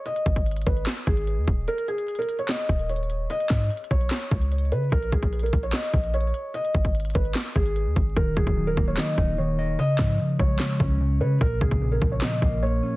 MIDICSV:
0, 0, Header, 1, 5, 480
1, 0, Start_track
1, 0, Key_signature, -6, "minor"
1, 0, Tempo, 405405
1, 67, Time_signature, 4, 2, 24, 8
1, 15352, End_track
2, 0, Start_track
2, 0, Title_t, "Felt piano"
2, 0, Program_c, 0, 0
2, 67, Note_on_c, 0, 75, 90
2, 519, Note_off_c, 0, 75, 0
2, 786, Note_on_c, 0, 71, 75
2, 989, Note_off_c, 0, 71, 0
2, 1268, Note_on_c, 0, 68, 77
2, 1945, Note_off_c, 0, 68, 0
2, 1988, Note_on_c, 0, 70, 99
2, 2190, Note_off_c, 0, 70, 0
2, 2227, Note_on_c, 0, 68, 83
2, 2566, Note_off_c, 0, 68, 0
2, 2587, Note_on_c, 0, 70, 87
2, 2790, Note_off_c, 0, 70, 0
2, 2828, Note_on_c, 0, 73, 77
2, 2929, Note_off_c, 0, 73, 0
2, 2947, Note_on_c, 0, 75, 86
2, 3399, Note_off_c, 0, 75, 0
2, 3427, Note_on_c, 0, 73, 64
2, 3879, Note_off_c, 0, 73, 0
2, 3908, Note_on_c, 0, 75, 96
2, 4359, Note_off_c, 0, 75, 0
2, 4627, Note_on_c, 0, 73, 86
2, 5540, Note_off_c, 0, 73, 0
2, 5589, Note_on_c, 0, 71, 80
2, 5791, Note_off_c, 0, 71, 0
2, 5828, Note_on_c, 0, 70, 105
2, 6031, Note_off_c, 0, 70, 0
2, 6070, Note_on_c, 0, 68, 81
2, 6407, Note_off_c, 0, 68, 0
2, 6428, Note_on_c, 0, 70, 75
2, 6630, Note_off_c, 0, 70, 0
2, 6666, Note_on_c, 0, 73, 76
2, 6768, Note_off_c, 0, 73, 0
2, 6786, Note_on_c, 0, 75, 88
2, 7238, Note_off_c, 0, 75, 0
2, 7268, Note_on_c, 0, 73, 81
2, 7719, Note_off_c, 0, 73, 0
2, 7746, Note_on_c, 0, 75, 92
2, 8198, Note_off_c, 0, 75, 0
2, 8466, Note_on_c, 0, 71, 77
2, 8669, Note_off_c, 0, 71, 0
2, 8949, Note_on_c, 0, 68, 81
2, 9625, Note_off_c, 0, 68, 0
2, 9668, Note_on_c, 0, 70, 94
2, 9871, Note_off_c, 0, 70, 0
2, 9907, Note_on_c, 0, 68, 85
2, 10246, Note_off_c, 0, 68, 0
2, 10267, Note_on_c, 0, 70, 87
2, 10470, Note_off_c, 0, 70, 0
2, 10509, Note_on_c, 0, 73, 75
2, 10610, Note_off_c, 0, 73, 0
2, 10628, Note_on_c, 0, 75, 85
2, 11079, Note_off_c, 0, 75, 0
2, 11108, Note_on_c, 0, 73, 64
2, 11559, Note_off_c, 0, 73, 0
2, 11589, Note_on_c, 0, 75, 99
2, 12040, Note_off_c, 0, 75, 0
2, 12309, Note_on_c, 0, 73, 87
2, 13221, Note_off_c, 0, 73, 0
2, 13269, Note_on_c, 0, 71, 80
2, 13471, Note_off_c, 0, 71, 0
2, 13508, Note_on_c, 0, 70, 108
2, 13711, Note_off_c, 0, 70, 0
2, 13750, Note_on_c, 0, 68, 81
2, 14087, Note_off_c, 0, 68, 0
2, 14108, Note_on_c, 0, 70, 77
2, 14311, Note_off_c, 0, 70, 0
2, 14347, Note_on_c, 0, 73, 72
2, 14449, Note_off_c, 0, 73, 0
2, 14467, Note_on_c, 0, 75, 89
2, 14918, Note_off_c, 0, 75, 0
2, 14948, Note_on_c, 0, 73, 82
2, 15352, Note_off_c, 0, 73, 0
2, 15352, End_track
3, 0, Start_track
3, 0, Title_t, "Clean electric guitar"
3, 0, Program_c, 1, 27
3, 9667, Note_on_c, 1, 51, 94
3, 9910, Note_on_c, 1, 54, 85
3, 10129, Note_off_c, 1, 51, 0
3, 10143, Note_on_c, 1, 51, 80
3, 10388, Note_on_c, 1, 58, 76
3, 10613, Note_off_c, 1, 51, 0
3, 10627, Note_on_c, 1, 51, 85
3, 10863, Note_on_c, 1, 63, 87
3, 11096, Note_off_c, 1, 51, 0
3, 11109, Note_off_c, 1, 54, 0
3, 11110, Note_on_c, 1, 51, 83
3, 11350, Note_on_c, 1, 75, 90
3, 11585, Note_off_c, 1, 63, 0
3, 11588, Note_off_c, 1, 58, 0
3, 11588, Note_on_c, 1, 49, 101
3, 11589, Note_off_c, 1, 51, 0
3, 11589, Note_off_c, 1, 75, 0
3, 11827, Note_on_c, 1, 53, 86
3, 12059, Note_off_c, 1, 49, 0
3, 12073, Note_on_c, 1, 49, 85
3, 12310, Note_on_c, 1, 56, 90
3, 12535, Note_off_c, 1, 49, 0
3, 12550, Note_on_c, 1, 49, 85
3, 12785, Note_on_c, 1, 61, 83
3, 13012, Note_off_c, 1, 49, 0
3, 13026, Note_on_c, 1, 49, 82
3, 13027, Note_off_c, 1, 53, 0
3, 13269, Note_on_c, 1, 73, 89
3, 13504, Note_off_c, 1, 49, 0
3, 13506, Note_off_c, 1, 61, 0
3, 13508, Note_off_c, 1, 73, 0
3, 13509, Note_off_c, 1, 56, 0
3, 13509, Note_on_c, 1, 46, 93
3, 13750, Note_on_c, 1, 49, 83
3, 13976, Note_off_c, 1, 46, 0
3, 13990, Note_on_c, 1, 46, 89
3, 14230, Note_on_c, 1, 53, 86
3, 14453, Note_off_c, 1, 46, 0
3, 14467, Note_on_c, 1, 46, 84
3, 14709, Note_on_c, 1, 58, 86
3, 14935, Note_off_c, 1, 46, 0
3, 14944, Note_off_c, 1, 49, 0
3, 14949, Note_on_c, 1, 46, 76
3, 15190, Note_on_c, 1, 61, 83
3, 15352, Note_off_c, 1, 46, 0
3, 15352, Note_off_c, 1, 53, 0
3, 15352, Note_off_c, 1, 58, 0
3, 15352, Note_off_c, 1, 61, 0
3, 15352, End_track
4, 0, Start_track
4, 0, Title_t, "808-style bass"
4, 0, Program_c, 2, 38
4, 308, Note_on_c, 2, 32, 100
4, 769, Note_off_c, 2, 32, 0
4, 788, Note_on_c, 2, 32, 103
4, 1018, Note_off_c, 2, 32, 0
4, 1267, Note_on_c, 2, 32, 107
4, 1627, Note_on_c, 2, 39, 101
4, 1645, Note_off_c, 2, 32, 0
4, 1742, Note_off_c, 2, 39, 0
4, 1748, Note_on_c, 2, 27, 107
4, 1978, Note_off_c, 2, 27, 0
4, 3187, Note_on_c, 2, 27, 107
4, 3879, Note_off_c, 2, 27, 0
4, 4147, Note_on_c, 2, 44, 100
4, 4378, Note_off_c, 2, 44, 0
4, 4628, Note_on_c, 2, 35, 103
4, 4858, Note_off_c, 2, 35, 0
4, 5107, Note_on_c, 2, 37, 105
4, 5588, Note_on_c, 2, 49, 104
4, 5606, Note_off_c, 2, 37, 0
4, 5816, Note_off_c, 2, 49, 0
4, 5828, Note_on_c, 2, 34, 114
4, 6058, Note_off_c, 2, 34, 0
4, 6068, Note_on_c, 2, 34, 101
4, 6528, Note_off_c, 2, 34, 0
4, 6547, Note_on_c, 2, 34, 100
4, 6778, Note_off_c, 2, 34, 0
4, 7027, Note_on_c, 2, 34, 106
4, 7488, Note_off_c, 2, 34, 0
4, 7987, Note_on_c, 2, 32, 101
4, 8448, Note_off_c, 2, 32, 0
4, 8467, Note_on_c, 2, 32, 101
4, 8698, Note_off_c, 2, 32, 0
4, 8947, Note_on_c, 2, 32, 110
4, 9307, Note_on_c, 2, 39, 100
4, 9325, Note_off_c, 2, 32, 0
4, 9421, Note_off_c, 2, 39, 0
4, 9427, Note_on_c, 2, 32, 103
4, 9658, Note_off_c, 2, 32, 0
4, 9667, Note_on_c, 2, 27, 111
4, 9898, Note_off_c, 2, 27, 0
4, 9907, Note_on_c, 2, 27, 105
4, 10022, Note_off_c, 2, 27, 0
4, 10027, Note_on_c, 2, 27, 105
4, 10373, Note_off_c, 2, 27, 0
4, 10387, Note_on_c, 2, 27, 101
4, 10618, Note_off_c, 2, 27, 0
4, 10867, Note_on_c, 2, 27, 108
4, 11559, Note_off_c, 2, 27, 0
4, 11828, Note_on_c, 2, 44, 101
4, 12058, Note_off_c, 2, 44, 0
4, 12308, Note_on_c, 2, 35, 106
4, 12538, Note_off_c, 2, 35, 0
4, 12788, Note_on_c, 2, 37, 113
4, 13268, Note_on_c, 2, 49, 101
4, 13286, Note_off_c, 2, 37, 0
4, 13496, Note_off_c, 2, 49, 0
4, 13509, Note_on_c, 2, 34, 110
4, 13739, Note_off_c, 2, 34, 0
4, 13748, Note_on_c, 2, 34, 101
4, 14209, Note_off_c, 2, 34, 0
4, 14228, Note_on_c, 2, 34, 101
4, 14458, Note_off_c, 2, 34, 0
4, 14708, Note_on_c, 2, 34, 102
4, 15168, Note_off_c, 2, 34, 0
4, 15352, End_track
5, 0, Start_track
5, 0, Title_t, "Drums"
5, 68, Note_on_c, 9, 42, 80
5, 186, Note_off_c, 9, 42, 0
5, 191, Note_on_c, 9, 42, 67
5, 308, Note_on_c, 9, 36, 90
5, 310, Note_off_c, 9, 42, 0
5, 310, Note_on_c, 9, 42, 77
5, 426, Note_off_c, 9, 36, 0
5, 428, Note_off_c, 9, 42, 0
5, 428, Note_on_c, 9, 36, 86
5, 428, Note_on_c, 9, 42, 59
5, 546, Note_off_c, 9, 36, 0
5, 547, Note_off_c, 9, 42, 0
5, 548, Note_on_c, 9, 42, 72
5, 608, Note_off_c, 9, 42, 0
5, 608, Note_on_c, 9, 42, 73
5, 668, Note_off_c, 9, 42, 0
5, 668, Note_on_c, 9, 42, 74
5, 728, Note_off_c, 9, 42, 0
5, 728, Note_on_c, 9, 42, 72
5, 787, Note_off_c, 9, 42, 0
5, 787, Note_on_c, 9, 42, 89
5, 788, Note_on_c, 9, 36, 86
5, 906, Note_off_c, 9, 36, 0
5, 906, Note_off_c, 9, 42, 0
5, 908, Note_on_c, 9, 42, 50
5, 1025, Note_on_c, 9, 39, 96
5, 1026, Note_off_c, 9, 42, 0
5, 1028, Note_on_c, 9, 38, 118
5, 1029, Note_on_c, 9, 42, 77
5, 1144, Note_off_c, 9, 39, 0
5, 1146, Note_off_c, 9, 38, 0
5, 1148, Note_off_c, 9, 42, 0
5, 1150, Note_on_c, 9, 42, 48
5, 1268, Note_off_c, 9, 42, 0
5, 1268, Note_on_c, 9, 36, 91
5, 1269, Note_on_c, 9, 42, 77
5, 1386, Note_off_c, 9, 36, 0
5, 1387, Note_off_c, 9, 42, 0
5, 1387, Note_on_c, 9, 42, 60
5, 1506, Note_off_c, 9, 42, 0
5, 1508, Note_on_c, 9, 42, 62
5, 1627, Note_off_c, 9, 42, 0
5, 1748, Note_on_c, 9, 36, 88
5, 1748, Note_on_c, 9, 42, 84
5, 1866, Note_off_c, 9, 36, 0
5, 1866, Note_off_c, 9, 42, 0
5, 1987, Note_on_c, 9, 42, 78
5, 2106, Note_off_c, 9, 42, 0
5, 2111, Note_on_c, 9, 42, 64
5, 2229, Note_off_c, 9, 42, 0
5, 2229, Note_on_c, 9, 42, 76
5, 2348, Note_off_c, 9, 42, 0
5, 2348, Note_on_c, 9, 42, 58
5, 2466, Note_off_c, 9, 42, 0
5, 2467, Note_on_c, 9, 42, 72
5, 2547, Note_off_c, 9, 42, 0
5, 2547, Note_on_c, 9, 42, 72
5, 2627, Note_off_c, 9, 42, 0
5, 2627, Note_on_c, 9, 42, 75
5, 2707, Note_off_c, 9, 42, 0
5, 2707, Note_on_c, 9, 42, 89
5, 2825, Note_off_c, 9, 42, 0
5, 2827, Note_on_c, 9, 42, 49
5, 2944, Note_on_c, 9, 39, 96
5, 2945, Note_off_c, 9, 42, 0
5, 2947, Note_on_c, 9, 38, 120
5, 2949, Note_on_c, 9, 42, 79
5, 3063, Note_off_c, 9, 39, 0
5, 3065, Note_off_c, 9, 38, 0
5, 3067, Note_off_c, 9, 42, 0
5, 3069, Note_on_c, 9, 42, 49
5, 3187, Note_on_c, 9, 36, 89
5, 3188, Note_off_c, 9, 42, 0
5, 3189, Note_on_c, 9, 42, 78
5, 3306, Note_off_c, 9, 36, 0
5, 3307, Note_off_c, 9, 42, 0
5, 3307, Note_on_c, 9, 42, 58
5, 3426, Note_off_c, 9, 42, 0
5, 3428, Note_on_c, 9, 42, 64
5, 3508, Note_off_c, 9, 42, 0
5, 3508, Note_on_c, 9, 42, 50
5, 3588, Note_off_c, 9, 42, 0
5, 3588, Note_on_c, 9, 42, 39
5, 3668, Note_off_c, 9, 42, 0
5, 3668, Note_on_c, 9, 42, 81
5, 3786, Note_off_c, 9, 42, 0
5, 3907, Note_on_c, 9, 42, 81
5, 4026, Note_off_c, 9, 42, 0
5, 4031, Note_on_c, 9, 42, 65
5, 4144, Note_on_c, 9, 39, 76
5, 4147, Note_on_c, 9, 36, 93
5, 4147, Note_on_c, 9, 38, 100
5, 4149, Note_off_c, 9, 42, 0
5, 4149, Note_on_c, 9, 42, 75
5, 4263, Note_off_c, 9, 39, 0
5, 4265, Note_off_c, 9, 38, 0
5, 4266, Note_off_c, 9, 36, 0
5, 4267, Note_off_c, 9, 42, 0
5, 4268, Note_on_c, 9, 42, 58
5, 4386, Note_off_c, 9, 42, 0
5, 4387, Note_on_c, 9, 42, 70
5, 4468, Note_off_c, 9, 42, 0
5, 4468, Note_on_c, 9, 42, 73
5, 4548, Note_off_c, 9, 42, 0
5, 4548, Note_on_c, 9, 42, 75
5, 4627, Note_off_c, 9, 42, 0
5, 4627, Note_on_c, 9, 36, 86
5, 4627, Note_on_c, 9, 42, 88
5, 4745, Note_off_c, 9, 42, 0
5, 4746, Note_off_c, 9, 36, 0
5, 4747, Note_on_c, 9, 42, 49
5, 4865, Note_on_c, 9, 39, 96
5, 4866, Note_off_c, 9, 42, 0
5, 4867, Note_on_c, 9, 38, 119
5, 4869, Note_on_c, 9, 42, 81
5, 4983, Note_off_c, 9, 39, 0
5, 4986, Note_off_c, 9, 38, 0
5, 4987, Note_off_c, 9, 42, 0
5, 4989, Note_on_c, 9, 42, 50
5, 5107, Note_on_c, 9, 36, 87
5, 5108, Note_off_c, 9, 42, 0
5, 5109, Note_on_c, 9, 42, 78
5, 5226, Note_off_c, 9, 36, 0
5, 5227, Note_off_c, 9, 42, 0
5, 5227, Note_on_c, 9, 42, 60
5, 5346, Note_off_c, 9, 42, 0
5, 5348, Note_on_c, 9, 42, 63
5, 5427, Note_off_c, 9, 42, 0
5, 5427, Note_on_c, 9, 42, 49
5, 5508, Note_off_c, 9, 42, 0
5, 5508, Note_on_c, 9, 42, 39
5, 5588, Note_off_c, 9, 42, 0
5, 5588, Note_on_c, 9, 42, 82
5, 5706, Note_off_c, 9, 42, 0
5, 5827, Note_on_c, 9, 42, 78
5, 5828, Note_on_c, 9, 36, 122
5, 5946, Note_off_c, 9, 36, 0
5, 5946, Note_off_c, 9, 42, 0
5, 5951, Note_on_c, 9, 42, 67
5, 6068, Note_on_c, 9, 36, 90
5, 6069, Note_off_c, 9, 42, 0
5, 6069, Note_on_c, 9, 42, 78
5, 6186, Note_off_c, 9, 36, 0
5, 6187, Note_off_c, 9, 42, 0
5, 6188, Note_on_c, 9, 36, 86
5, 6188, Note_on_c, 9, 42, 58
5, 6306, Note_off_c, 9, 36, 0
5, 6306, Note_off_c, 9, 42, 0
5, 6308, Note_on_c, 9, 42, 74
5, 6388, Note_off_c, 9, 42, 0
5, 6388, Note_on_c, 9, 42, 72
5, 6467, Note_off_c, 9, 42, 0
5, 6467, Note_on_c, 9, 42, 74
5, 6546, Note_off_c, 9, 42, 0
5, 6546, Note_on_c, 9, 42, 88
5, 6547, Note_on_c, 9, 36, 85
5, 6665, Note_off_c, 9, 42, 0
5, 6666, Note_off_c, 9, 36, 0
5, 6667, Note_on_c, 9, 42, 49
5, 6784, Note_on_c, 9, 39, 96
5, 6785, Note_off_c, 9, 42, 0
5, 6787, Note_on_c, 9, 38, 120
5, 6788, Note_on_c, 9, 42, 77
5, 6903, Note_off_c, 9, 39, 0
5, 6905, Note_off_c, 9, 38, 0
5, 6907, Note_off_c, 9, 42, 0
5, 6909, Note_on_c, 9, 42, 48
5, 7027, Note_off_c, 9, 42, 0
5, 7027, Note_on_c, 9, 36, 87
5, 7029, Note_on_c, 9, 42, 77
5, 7146, Note_off_c, 9, 36, 0
5, 7147, Note_off_c, 9, 42, 0
5, 7147, Note_on_c, 9, 42, 61
5, 7266, Note_off_c, 9, 42, 0
5, 7268, Note_on_c, 9, 42, 63
5, 7348, Note_off_c, 9, 42, 0
5, 7348, Note_on_c, 9, 42, 50
5, 7428, Note_off_c, 9, 42, 0
5, 7428, Note_on_c, 9, 42, 38
5, 7508, Note_off_c, 9, 42, 0
5, 7508, Note_on_c, 9, 42, 79
5, 7626, Note_off_c, 9, 42, 0
5, 7747, Note_on_c, 9, 42, 80
5, 7865, Note_off_c, 9, 42, 0
5, 7871, Note_on_c, 9, 42, 65
5, 7987, Note_on_c, 9, 36, 91
5, 7989, Note_off_c, 9, 42, 0
5, 7989, Note_on_c, 9, 42, 75
5, 8106, Note_off_c, 9, 36, 0
5, 8107, Note_off_c, 9, 42, 0
5, 8107, Note_on_c, 9, 36, 86
5, 8108, Note_on_c, 9, 42, 59
5, 8226, Note_off_c, 9, 36, 0
5, 8226, Note_off_c, 9, 42, 0
5, 8227, Note_on_c, 9, 42, 74
5, 8287, Note_off_c, 9, 42, 0
5, 8287, Note_on_c, 9, 42, 74
5, 8347, Note_off_c, 9, 42, 0
5, 8347, Note_on_c, 9, 42, 75
5, 8407, Note_off_c, 9, 42, 0
5, 8407, Note_on_c, 9, 42, 74
5, 8466, Note_off_c, 9, 42, 0
5, 8466, Note_on_c, 9, 42, 87
5, 8467, Note_on_c, 9, 36, 88
5, 8585, Note_off_c, 9, 36, 0
5, 8585, Note_off_c, 9, 42, 0
5, 8587, Note_on_c, 9, 42, 49
5, 8704, Note_on_c, 9, 39, 95
5, 8705, Note_off_c, 9, 42, 0
5, 8706, Note_on_c, 9, 38, 118
5, 8708, Note_on_c, 9, 42, 79
5, 8822, Note_off_c, 9, 39, 0
5, 8825, Note_off_c, 9, 38, 0
5, 8826, Note_off_c, 9, 42, 0
5, 8828, Note_on_c, 9, 42, 50
5, 8947, Note_off_c, 9, 42, 0
5, 8947, Note_on_c, 9, 36, 89
5, 8948, Note_on_c, 9, 42, 77
5, 9065, Note_off_c, 9, 36, 0
5, 9066, Note_off_c, 9, 42, 0
5, 9066, Note_on_c, 9, 42, 61
5, 9184, Note_off_c, 9, 42, 0
5, 9187, Note_on_c, 9, 42, 62
5, 9305, Note_off_c, 9, 42, 0
5, 9427, Note_on_c, 9, 36, 90
5, 9427, Note_on_c, 9, 42, 81
5, 9545, Note_off_c, 9, 42, 0
5, 9546, Note_off_c, 9, 36, 0
5, 9667, Note_on_c, 9, 36, 127
5, 9786, Note_off_c, 9, 36, 0
5, 9907, Note_on_c, 9, 36, 87
5, 10025, Note_off_c, 9, 36, 0
5, 10027, Note_on_c, 9, 36, 84
5, 10145, Note_off_c, 9, 36, 0
5, 10387, Note_on_c, 9, 36, 89
5, 10505, Note_off_c, 9, 36, 0
5, 10625, Note_on_c, 9, 39, 97
5, 10627, Note_on_c, 9, 38, 120
5, 10743, Note_off_c, 9, 39, 0
5, 10746, Note_off_c, 9, 38, 0
5, 10867, Note_on_c, 9, 36, 86
5, 10985, Note_off_c, 9, 36, 0
5, 11825, Note_on_c, 9, 39, 78
5, 11828, Note_on_c, 9, 36, 92
5, 11828, Note_on_c, 9, 38, 95
5, 11943, Note_off_c, 9, 39, 0
5, 11946, Note_off_c, 9, 36, 0
5, 11946, Note_off_c, 9, 38, 0
5, 12308, Note_on_c, 9, 36, 89
5, 12426, Note_off_c, 9, 36, 0
5, 12544, Note_on_c, 9, 39, 92
5, 12547, Note_on_c, 9, 38, 118
5, 12663, Note_off_c, 9, 39, 0
5, 12665, Note_off_c, 9, 38, 0
5, 12788, Note_on_c, 9, 36, 87
5, 12906, Note_off_c, 9, 36, 0
5, 13508, Note_on_c, 9, 36, 123
5, 13627, Note_off_c, 9, 36, 0
5, 13748, Note_on_c, 9, 36, 90
5, 13866, Note_off_c, 9, 36, 0
5, 13868, Note_on_c, 9, 36, 86
5, 13987, Note_off_c, 9, 36, 0
5, 14228, Note_on_c, 9, 36, 89
5, 14346, Note_off_c, 9, 36, 0
5, 14465, Note_on_c, 9, 39, 95
5, 14467, Note_on_c, 9, 38, 121
5, 14583, Note_off_c, 9, 39, 0
5, 14586, Note_off_c, 9, 38, 0
5, 14708, Note_on_c, 9, 36, 88
5, 14826, Note_off_c, 9, 36, 0
5, 15352, End_track
0, 0, End_of_file